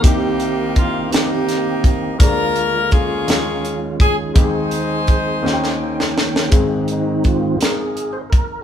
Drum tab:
HH |x-x-x-x-x-x-|x-x-x-x-x-x-|x-x-x-------|x-x-x-x-x-x-|
SD |------o-o---|------o-----|------oo-ooo|------o-----|
BD |o---o-----o-|o---o-----o-|o---o-------|o---o-----o-|